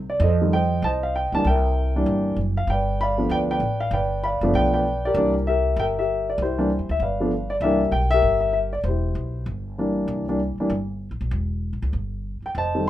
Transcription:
Already playing: upright bass C3
0.10 grand piano D5
0.20 upright bass F2, grand piano D#5
0.24 grand piano A4 C5
0.42 grand piano D#3 G3 A3 C4
0.53 grand piano C5 D#5 G5
0.82 upright bass C2, grand piano C5 D#5 A5
1.03 grand piano F5
1.16 grand piano G5
1.32 upright bass C#2, grand piano E3 G3 A#3 D4 A5
1.44 upright bass C2, grand piano G5
1.49 grand piano A#4 E5
1.96 grand piano E3 G3 A#3 D4
2.06 upright bass G1
2.36 upright bass F#1
2.57 grand piano F5
2.67 upright bass G1, grand piano G5
2.72 grand piano B4 D5
3.01 grand piano D5 F5 B5
3.18 grand piano F3 A3 B3 D4
3.29 upright bass D2, grand piano B4 D5 G5
3.51 grand piano B4 D5 G5
3.60 upright bass A1
3.80 grand piano F5
3.91 upright bass G1, grand piano B4 D5 G5
4.24 grand piano D5 F5 B5
4.41 upright bass F#1, grand piano F3 A3 B3 D4
4.54 upright bass B1, grand piano B4 D5 G5
4.74 grand piano B4 D5 G5
5.05 grand piano G4 A#4 D5
5.14 upright bass C2, grand piano E3 G3 A#3 D4
5.47 grand piano G4 A#4 E5
5.76 upright bass G1, grand piano G5
5.80 grand piano A#4 E5
5.99 grand piano G4 A#4 E5
6.30 grand piano D5
6.38 upright bass C2
6.42 grand piano E4 G4 C5
6.58 grand piano E3 G3 A#3 D4
6.79 upright bass E2
6.89 upright bass D2, grand piano E5
7.00 upright bass G1, grand piano B4 D5 F5
7.20 grand piano F3 A3 B3 D4
7.50 grand piano D5
7.60 upright bass C2, grand piano E3 G3 A#3 D4 E5
7.65 grand piano G4 A#4
7.91 upright bass B1, grand piano G5
8.11 grand piano G4 A#4 E5
8.22 upright bass G1
8.41 grand piano E5
8.53 grand piano E5
8.73 grand piano D5
8.84 upright bass E1, grand piano C5
8.88 grand piano E4 G4
9.15 upright bass B1
9.46 upright bass G1
9.78 grand piano E3 G3 A#3 D4
10.08 upright bass C2
10.28 grand piano E3 G3 A#3 D4
10.58 grand piano E3 G3 A#3 D4, muted upright bass stroke
10.70 upright bass G1
11.11 upright bass A#1
11.21 upright bass B1
11.31 upright bass E1
11.73 upright bass A#1
11.82 upright bass C#2
11.93 upright bass G1
12.42 grand piano G5, muted upright bass stroke
12.55 upright bass F1, grand piano C5 D#5 A5
12.75 grand piano D#3 G3 A3 C4

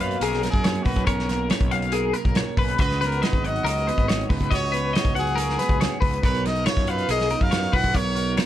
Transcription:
Already playing: picked electric bass F#2, clean electric guitar B2 A#3 C#4 A#4
0.00 clean electric guitar F#3 F5, trumpet B4, closed hi-hat
0.11 closed hi-hat
0.20 picked electric bass B1, clean electric guitar C#4 G#4, trumpet A#4, closed hi-hat
0.33 snare, closed hi-hat
0.43 clean electric guitar F#2 A#3 A#4, snare, closed hi-hat
0.50 picked electric bass F#2, trumpet G#4, kick, closed hi-hat
0.64 clean electric guitar C#5, snare, closed hi-hat
0.75 closed hi-hat
0.83 picked electric bass B1, clean electric guitar C#4 B4, trumpet F#4, kick, open hi-hat
0.96 picked electric bass B1, kick, closed hi-hat
1.05 picked electric bass B1, clean electric guitar B2 C#4 C#5, trumpet A#4, kick, closed hi-hat
1.20 snare
1.28 clean electric guitar A#3 A#4, snare, closed hi-hat
1.49 clean electric guitar C#4 C#5, snare, closed hi-hat
1.60 picked electric bass B1, kick, closed hi-hat
1.71 clean electric guitar F#3 F5, closed hi-hat
1.82 closed hi-hat
1.92 clean electric guitar G#4 A#4, closed hi-hat
2.13 clean electric guitar F#2 A#3 A#4, closed hi-hat
2.25 picked electric bass B1, kick, closed hi-hat
2.35 clean electric guitar C#5, snare, closed hi-hat
2.57 picked electric bass B1, clean electric guitar C#4 B4, kick, open hi-hat
2.68 closed hi-hat
2.78 picked electric bass C#2, clean electric guitar C#3 F#4 D#5, trumpet B4, kick, closed hi-hat
2.90 snare, closed hi-hat
3.01 clean electric guitar B3 B4, snare, closed hi-hat
3.06 trumpet A#4
3.12 closed hi-hat
3.22 clean electric guitar D#4 D#5, snare, closed hi-hat
3.27 trumpet B4
3.33 picked electric bass G#1, kick, closed hi-hat
3.42 clean electric guitar F#3 F#5, closed hi-hat
3.46 trumpet D#5
3.56 closed hi-hat
3.64 picked electric bass C#2, clean electric guitar F#4 A#4, closed hi-hat
3.68 trumpet D#5
3.78 closed hi-hat
3.86 clean electric guitar G#2 B3 B4, closed hi-hat
3.97 picked electric bass G#1, kick, closed hi-hat
4.08 clean electric guitar C#5, snare, closed hi-hat
4.21 closed hi-hat
4.29 picked electric bass C#2, clean electric guitar D#4 B4, kick, open hi-hat
4.41 picked electric bass C#2, kick, closed hi-hat
4.51 picked electric bass C#2, clean electric guitar C#3 F#4 D#5, trumpet C#5, kick, closed hi-hat
4.72 clean electric guitar B3 B4, closed hi-hat
4.93 clean electric guitar D#4 D#5, trumpet C#5, snare, closed hi-hat
5.05 picked electric bass C#2, kick, closed hi-hat
5.15 clean electric guitar F#3 F#5, trumpet G#4, closed hi-hat
5.27 closed hi-hat
5.36 clean electric guitar A#4, closed hi-hat
5.40 clean electric guitar F#4
5.50 snare
5.59 clean electric guitar G#2 B3 B4, snare, closed hi-hat
5.69 picked electric bass C#2, kick
5.81 clean electric guitar C#5, snare, closed hi-hat
6.01 picked electric bass C#2, clean electric guitar B4, kick, open hi-hat
6.06 clean electric guitar D#4
6.14 closed hi-hat
6.23 picked electric bass B1, clean electric guitar B2 A#4 C#5, trumpet B4, kick, closed hi-hat
6.34 closed hi-hat
6.45 clean electric guitar D#4 A#4, trumpet D#5, snare, closed hi-hat
6.56 closed hi-hat
6.66 clean electric guitar F4 C#5, trumpet C#5, snare, closed hi-hat
6.77 picked electric bass F#2, kick, snare, closed hi-hat
6.87 clean electric guitar B3 F5, trumpet B4, closed hi-hat
6.98 closed hi-hat
7.09 picked electric bass B1, clean electric guitar G#4 A#4, trumpet D#5, closed hi-hat
7.20 snare, closed hi-hat
7.30 clean electric guitar F#2 D#4 A#4, closed hi-hat
7.40 picked electric bass F#2, trumpet F5, kick, closed hi-hat
7.51 clean electric guitar C#5, snare, closed hi-hat
7.63 closed hi-hat
7.73 picked electric bass B1, clean electric guitar F4 B4, trumpet F#5, kick, open hi-hat
7.84 picked electric bass B1, kick, closed hi-hat
7.94 picked electric bass B1, clean electric guitar B2 A#4 C#5, trumpet C#5, kick, closed hi-hat
8.15 clean electric guitar D#4 A#4, closed hi-hat
8.37 clean electric guitar F4 C#5, snare, closed hi-hat

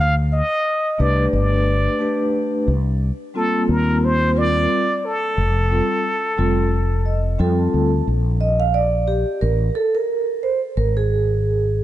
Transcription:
0.00 fretless electric bass D2, muted trumpet F5
0.33 muted trumpet D#5
0.98 fretless electric bass C2, vibraphone A3 D4 G4 B4, muted trumpet D5
1.33 fretless electric bass G1, muted trumpet D5
1.99 vibraphone A3 D4 G4 B4
2.68 fretless electric bass C2
3.34 vibraphone G3 A#3 C4 F4, muted trumpet A4
3.69 fretless electric bass D#2, muted trumpet A#4
4.04 muted trumpet C5
4.35 vibraphone G3 C4 F4 A#4, muted trumpet D5
5.05 muted trumpet A4
5.38 fretless electric bass F1
5.70 vibraphone G3 C4 F4 A4
6.37 fretless electric bass F1, vibraphone G3 C4 F4 A4
7.06 vibraphone D#5
7.38 fretless electric bass F2, vibraphone G3 C4 F4 A4 G5
7.59 vibraphone A5
7.74 fretless electric bass D2
8.07 fretless electric bass A#1
8.41 vibraphone D#5
8.60 vibraphone F5
8.74 vibraphone D5
9.08 vibraphone G4
9.41 fretless electric bass A1, vibraphone A#4
9.75 vibraphone A4
9.95 vibraphone A#4
10.43 vibraphone C5
10.77 fretless electric bass G#1, vibraphone A#4
10.97 vibraphone G#4

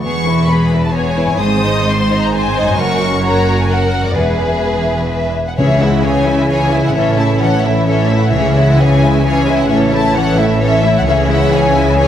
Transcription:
Already playing: harp E3 B3 E4
0.00 double bass section E1, cello section E2, violin section B3 C#6, harp G#4
0.05 violin section G#4
0.27 violin section E4 B4
0.49 violin section B3 G#4 B5, viola section B4
0.72 violin section E4 B4
0.84 violin section A5
0.93 violin section B3 G#4 G#5, viola section C#5
1.17 violin section E4 B4
1.24 harp G#2
1.29 harp C4
1.33 harp D#4
1.37 violin section C4 C5 D#6, harp G#4, viola section C5
1.42 double bass section G#1, cello section G#2
1.65 violin section D#4 D#5
1.88 violin section C4 C5 C6
2.11 violin section D#4 D#5
2.23 violin section A#5
2.34 violin section C4 C5 G#5, viola section C5
2.56 violin section D#4 D#5
2.61 harp F#2
2.66 harp A#3
2.70 harp F#4
2.75 harp A#4
2.79 double bass section F#1, cello section F#2, violin section F#4 A#4 C#6, viola section A#4
3.24 violin section F#4 A#4 A#5, viola section C#5
3.62 violin section G#5
3.69 violin section F#4 A#4 F#5, viola section A#4
4.00 harp E2
4.04 harp G#3, violin section D5
4.09 harp G#4
4.14 cello section E2, violin section G#4 B4, harp B4
4.18 double bass section E1, viola section B4, violin section E5
5.12 violin section E5
5.47 violin section F#5
5.58 double bass section C#2, timpani C#3, cello section C#3, harp C#3, viola section E3 C#4, french horn section E3 C#4, violin section G#4 C#5 E5
5.81 viola section G#3 E4, harp G#3, violin section E4 E5 F#5
6.02 viola section E3 C#4, harp C#4, violin section G#4 C#5 G#5
6.26 viola section G#3 E4, harp G#3, violin section E4 E5
6.49 viola section E3 C#4, harp E4, violin section G#4 C#5 G#5
6.73 viola section G#3 E4, harp G#3, violin section E4 E5
6.86 violin section F#5
6.95 double bass section A1, cello section A2, harp A2, viola section E3 C#4, violin section A4 C#5 E5
7.18 harp A3, viola section A3 E4, violin section E4 E5 A5
7.41 viola section E3 C#4, harp E3, violin section A4 C#5 F#5
7.64 viola section A3 E4, harp A3, violin section E4 E5
7.87 viola section E3 C#4, harp E4, violin section A4 C#5 E5
8.09 viola section A3 E4, harp A3, violin section E4 E5
8.22 violin section F#5
8.32 double bass section C#2, cello section C#3, harp C#3, viola section E3 C#4, french horn section E3 C#4, violin section G#4 C#5 E5
8.56 harp G#3, viola section G#3 E4, violin section E4 E5 F#5
8.79 viola section E3 C#4, harp C#4, violin section G#4 C#5 G#5
9.03 harp G#3, viola section G#3 E4, violin section E4 E5
9.25 viola section E3 C#4, harp E4, violin section G#4 C#5 G#5
9.48 viola section G#3 E4, harp G#3, violin section E4 E5
9.61 violin section F#5
9.69 double bass section A1, cello section A2, harp A2, viola section E3 C#4, violin section A4 C#5 E5
9.92 harp A3, viola section A3 E4, violin section E4 E5 A5
10.15 viola section E3 C#4, harp E3, violin section A4 C#5 F#5
10.37 viola section A3 E4, harp A3, violin section E4 E5
10.60 viola section E3 C#4, harp E4, violin section A4 C#5 E5
10.83 viola section A3 E4, harp A3, violin section E4 E5
10.97 violin section F#5
11.06 double bass section C#2, cello section C#3, harp C#3, viola section E3 C#4, french horn section E3 C#4, violin section G#4 C#5 E5
11.28 harp G#3, viola section G#3 E4, violin section E4 E5 F#5
11.52 viola section E3 C#4, harp C#4, violin section G#4 C#5 G#5
11.76 viola section G#3 E4, harp G#3, violin section E4 E5
11.97 viola section E3 C#4, harp E4, violin section G#4 C#5 G#5

